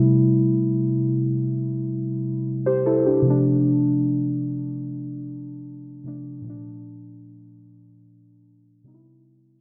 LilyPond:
\new Staff \with { instrumentName = "Synth keys" } { \time 4/4 \key c \major \tempo 4 = 75 << { r2. r16 <g' c''>16 <e' a'>16 <d' g'>16~ | <d' g'>16 r2. r8. | r1 | } \\ { <c g a e'>2.~ <c g a e'>8 r8 | <c f a d'>2.~ <c f a d'>8 <c f a d'>8 | <bes, f a d'>2. <c g b ees' e'>4 | } >> }